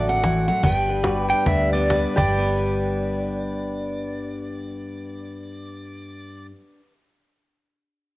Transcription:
Already playing: fingered electric bass A1, steel-string acoustic guitar A2 D3 F#3 F#4 A4, pedal steel guitar F#4 A4 D5
0.09 steel-string acoustic guitar C4 F#5
0.23 steel-string acoustic guitar E3, cajon slap
0.48 steel-string acoustic guitar F#3 F#5
0.63 fingered electric bass G1, steel-string acoustic guitar G2 G3 B3 D4 B4 G5, cajon bass
0.89 steel-string acoustic guitar B4
1.04 steel-string acoustic guitar G3, pedal steel guitar F#4 B4 D5, cajon slap
1.24 pedal steel guitar G4
1.30 steel-string acoustic guitar D4, pedal steel guitar G5, cajon slap
1.46 fingered electric bass D2, steel-string acoustic guitar D3, pedal steel guitar E5, cajon bass
1.73 steel-string acoustic guitar B3, pedal steel guitar D5, cajon slap
1.90 steel-string acoustic guitar G3 B4, cajon slap
2.16 fingered electric bass G1, steel-string acoustic guitar G2 G5, pedal steel guitar G4 B4 D5, cajon bass
2.28 steel-string acoustic guitar G3
2.37 steel-string acoustic guitar B3
2.47 steel-string acoustic guitar D4
2.57 steel-string acoustic guitar B4

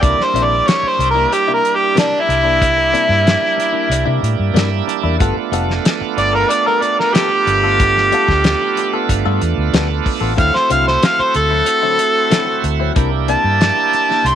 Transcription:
0.01 fingered electric bass C2, clean electric guitar C3 A#3 D4 E4, tonewheel organ G3 A#3 D4 E4, harmonica D5, kick, closed hi-hat
0.18 muted clean electric guitar stroke, snare
0.24 harmonica C5
0.34 fingered electric bass A#1, clean electric guitar C3 A#3 D4 E4, closed hi-hat
0.44 harmonica D5
0.67 harmonica C#5, muted clean electric guitar stroke, snare, closed hi-hat
0.83 muted fingered electric bass stroke, muted clean electric guitar stroke
0.89 harmonica C5
0.99 fingered electric bass C2, muted clean electric guitar stroke, closed hi-hat
1.11 harmonica A#4
1.15 clean electric guitar A#3 D4 E4
1.31 harmonica G4, muted clean electric guitar stroke, closed hi-hat
1.48 clean electric guitar C3 A#3 D4 E4
1.54 harmonica A#4
1.65 closed hi-hat
1.75 harmonica G4
1.95 clean electric guitar C3 A#3 D4 E4, harmonica D4, snare, closed hi-hat
2.12 muted clean electric guitar stroke
2.21 harmonica E4
2.28 fingered electric bass C2, muted clean electric guitar stroke, closed hi-hat
2.43 clean electric guitar A#3 D4 E4
2.62 kick, closed hi-hat
2.77 muted clean electric guitar stroke
2.93 clean electric guitar C3 A#3 D4 E4, closed hi-hat
3.09 fingered electric bass G2
3.24 muted clean electric guitar stroke, snare, closed hi-hat
3.41 muted clean electric guitar stroke
3.58 muted clean electric guitar stroke, closed hi-hat
3.72 clean electric guitar A#3 D4 E4
3.89 fingered electric bass C2, muted clean electric guitar stroke, closed hi-hat
4.06 fingered electric bass C3, clean electric guitar C3 A#3 D4 E4
4.22 fingered electric bass A2, muted clean electric guitar stroke, closed hi-hat
4.39 fingered electric bass G2
4.54 fingered electric bass G2, clean electric guitar C3 A#3 D4 E4, tonewheel organ E5, snare, closed hi-hat
4.70 muted clean electric guitar stroke
4.87 tonewheel organ A5, muted clean electric guitar stroke, closed hi-hat
5.03 fingered electric bass E2, clean electric guitar A#3 D4 E4
5.18 fingered electric bass G1, clean electric guitar G3 B3 F4 A4, tonewheel organ A3 B3 D4 F4, kick, closed hi-hat
5.37 muted clean electric guitar stroke
5.52 fingered electric bass F1, clean electric guitar G3 B3 F4 A4, closed hi-hat
5.70 snare
5.85 muted clean electric guitar stroke, snare, closed hi-hat
6.01 muted fingered electric bass stroke, muted clean electric guitar stroke
6.17 fingered electric bass G1, harmonica D5, muted clean electric guitar stroke, closed hi-hat
6.33 clean electric guitar B3 F4 A4, harmonica A#4
6.50 harmonica D5, muted clean electric guitar stroke, closed hi-hat
6.66 clean electric guitar G3 B3 F4 A4, harmonica A#4
6.82 harmonica D5, muted clean electric guitar stroke, closed hi-hat
7.00 harmonica A#4, snare
7.14 clean electric guitar G3 B3 F4 A4, harmonica G4, snare, closed hi-hat
7.31 muted clean electric guitar stroke
7.47 fingered electric bass G1, muted clean electric guitar stroke, closed hi-hat
7.64 clean electric guitar B3 F4 A4
7.80 kick, closed hi-hat
7.96 muted clean electric guitar stroke, snare
8.12 clean electric guitar G3 B3 F4 A4, closed hi-hat
8.28 fingered electric bass D2, kick, snare
8.44 muted clean electric guitar stroke, snare, closed hi-hat
8.62 muted clean electric guitar stroke
8.77 muted clean electric guitar stroke, closed hi-hat
8.94 clean electric guitar B3 F4 A4
9.09 fingered electric bass G1, muted clean electric guitar stroke, kick, closed hi-hat
9.25 fingered electric bass G2, clean electric guitar G3 B3 F4 A4
9.41 fingered electric bass E2, muted clean electric guitar stroke, closed hi-hat
9.58 fingered electric bass D2
9.73 fingered electric bass D2, clean electric guitar G3 B3 F4 A4, snare, closed hi-hat
9.89 muted clean electric guitar stroke
10.06 muted clean electric guitar stroke, kick, open hi-hat
10.21 fingered electric bass A1, clean electric guitar B3 F4 A4
10.36 fingered electric bass D2, clean electric guitar D3 F#3 C4 E4, tonewheel organ A3 C4 E4 F#4, harmonica F5, kick, closed hi-hat
10.53 harmonica C5, muted clean electric guitar stroke, muted fingered electric bass stroke, snare
10.69 fingered electric bass C2, clean electric guitar D3 F#3 C4 E4, harmonica F5, closed hi-hat
10.87 harmonica C5, snare
11.02 harmonica F5, muted clean electric guitar stroke, snare, closed hi-hat
11.19 harmonica C5, muted clean electric guitar stroke, muted fingered electric bass stroke
11.34 fingered electric bass D2, harmonica A4, muted clean electric guitar stroke, closed hi-hat
11.51 clean electric guitar F#3 C4 E4
11.66 muted clean electric guitar stroke, closed hi-hat
11.83 clean electric guitar D3 F#3 C4 E4
11.99 muted clean electric guitar stroke, closed hi-hat
12.30 clean electric guitar D3 F#3 C4 E4, snare, closed hi-hat
12.47 muted clean electric guitar stroke
12.63 fingered electric bass D2, muted clean electric guitar stroke, closed hi-hat
12.80 clean electric guitar F#3 C4 E4
12.95 fingered electric bass C2, clean electric guitar C3 A#3 D4 E4, tonewheel organ A#3 D4 E4 G4, kick, closed hi-hat
13.12 muted clean electric guitar stroke
13.28 clean electric guitar C3 A#3 D4 E4, harmonica A5, closed hi-hat
13.44 fingered electric bass G2
13.61 muted clean electric guitar stroke, snare, closed hi-hat
13.77 muted clean electric guitar stroke
13.93 muted clean electric guitar stroke, closed hi-hat
14.09 clean electric guitar A#3 D4 E4, snare
14.25 fingered electric bass C2, harmonica C6, muted clean electric guitar stroke, closed hi-hat

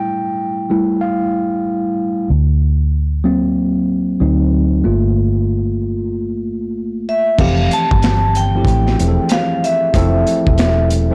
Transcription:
Already playing: tine electric piano G3 A3 E4 G5
0.70 tine electric piano G3 A3 E4
1.01 tine electric piano F5
2.30 fingered electric bass D2
3.24 tine electric piano F#3 A#3 C4
4.20 fingered electric bass D2, tine electric piano F#3 C4 D#4
4.84 fingered electric bass G1, tine electric piano A3 A#3 F4
7.09 vibraphone E5
7.38 fingered electric bass F1, tine electric piano E3 F3 A3 C4 G4, vibraphone F5, kick, crash
7.71 vibraphone A5, closed hi-hat
7.91 fingered electric bass G1, kick
8.02 finger snap, snare, closed hi-hat
8.35 vibraphone G5, closed hi-hat
8.54 tine electric piano F3 A3 C4 E4 G4
8.65 fingered electric bass A1, kick, closed hi-hat
8.87 snare
8.99 fingered electric bass E1, tine electric piano E3 F3 A3 C4 G#4, closed hi-hat
9.08 tine electric piano A4
9.29 vibraphone F5, finger snap, snare, closed hi-hat
9.64 vibraphone E5, closed hi-hat
9.94 fingered electric bass F1, tine electric piano F3 A3 C4 E4 A4, kick, closed hi-hat
10.27 closed hi-hat
10.47 fingered electric bass E1, kick
10.58 finger snap, snare, closed hi-hat
10.90 closed hi-hat
11.10 tine electric piano F3 A3 C4

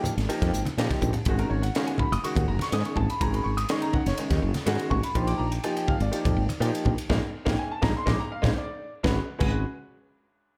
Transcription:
0.04 hi-hat pedal, high conga, low conga
0.17 fretless electric bass G#1, snare, ride
0.29 grand piano F3 A#3 D#4 G4, ride
0.42 fretless electric bass F2, kick, snare, ride
0.53 fretless electric bass G#1, hi-hat pedal
0.65 ride, high conga
0.78 fretless electric bass A#2, grand piano F3 A#3 D#4 G4, snare, ride
0.89 kick, snare, ride, high conga
1.01 fretless electric bass A#1, kick, hi-hat pedal, low conga
1.13 ride, low conga
1.25 fretless electric bass G#1, grand piano D#3 G#3 C#4 F#4, kick, ride
1.39 grand piano A#4, ride
1.50 fretless electric bass G#1, grand piano C#5
1.62 grand piano F#5, ride
1.75 grand piano D#3 G#3 C#4 F#4 F5, snare, ride
1.87 grand piano G#5, ride
1.98 grand piano B5, kick, high conga, low conga
2.12 fretless electric bass F#1, grand piano D#6, ride
2.23 grand piano D#3 G#3 C#4 F#4 C#6, muted fretless electric bass stroke, ride
2.35 fretless electric bass D#2, grand piano F#5, kick, ride, low conga
2.48 fretless electric bass F#1, grand piano A#5
2.59 grand piano C#6, snare, ride, high conga
2.72 fretless electric bass G#2, grand piano D#3 G#3 C#4 G#4 D#6, snare, ride
2.85 grand piano C#6, ride
2.96 fretless electric bass G#1, grand piano A5, kick, low conga
3.10 grand piano B5, ride
3.21 fretless electric bass G#1, grand piano D#3 G#3 C#4 G#4 A#5, kick, ride
3.34 grand piano B5, ride
3.44 fretless electric bass G#1, grand piano C#6
3.57 grand piano D#6, ride
3.69 grand piano D#3 G#3 C#4 D#4 C#6, snare, ride
3.82 grand piano A#5, ride
3.93 grand piano F#5, kick, high conga, low conga
4.06 fretless electric bass F#1, grand piano C#5, snare, ride
4.18 grand piano D#3 G#3 C#4 D#4, ride
4.30 fretless electric bass D#2, kick, snare, ride, low conga
4.42 fretless electric bass F#1
4.54 snare, ride, high conga
4.66 fretless electric bass G#2, grand piano D#3 G#3 C#4 F#4, snare, ride
4.79 ride
4.90 fretless electric bass G#1, grand piano C#6, kick, low conga
5.03 grand piano B5, ride
5.15 fretless electric bass A#1, grand piano F3 A#3 D#4 G4 C6, kick, ride
5.27 grand piano D6, ride
5.38 fretless electric bass A#1, grand piano A#5
5.51 grand piano G5, ride
5.64 grand piano F3 A#3 D#4 G4 G#5, ride
5.76 grand piano G5, ride
5.88 grand piano F5, kick, high conga, low conga
6.00 fretless electric bass G#1, grand piano D5, ride
6.11 grand piano F3 A#3 D#4 G4, muted fretless electric bass stroke, ride
6.25 fretless electric bass F2, kick, ride, low conga
6.37 fretless electric bass G#1
6.49 ride, high conga
6.60 fretless electric bass A#2, grand piano F3 A#3 D#4 G4, ride
6.75 ride
6.85 fretless electric bass A#1, kick, low conga
6.98 ride
7.10 fretless electric bass A#1, grand piano G#3 A#3 D#4, kick, snare, low conga
7.45 fretless electric bass A#1, grand piano G#3 A#3 D#4 G5, kick, snare, low conga
7.59 grand piano G#5
7.71 grand piano A5
7.82 fretless electric bass A#1, grand piano G#3 A#3 D#4 A#5, kick, snare, low conga
7.97 grand piano C6
8.06 fretless electric bass A#1, grand piano G#3 A#3 D#4 D6, kick, snare, low conga
8.20 grand piano A#5
8.32 grand piano F5
8.42 fretless electric bass A#1, grand piano G#3 A#3 D#4 C5, kick, snare, low conga
8.58 grand piano D5
9.03 fretless electric bass G#1, grand piano G#3 C#4 F#4 B4, kick, snare, high conga
9.38 fretless electric bass G#1, grand piano G#3 C#4 F#4 B4, kick, crash, high conga

